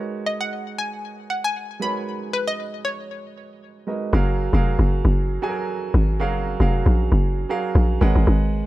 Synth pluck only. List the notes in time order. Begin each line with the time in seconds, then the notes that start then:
0.26 D#5
0.41 F#5
0.78 G#5
1.30 F#5
1.44 G#5
1.82 B5
2.33 B4
2.48 D#5
2.85 C#5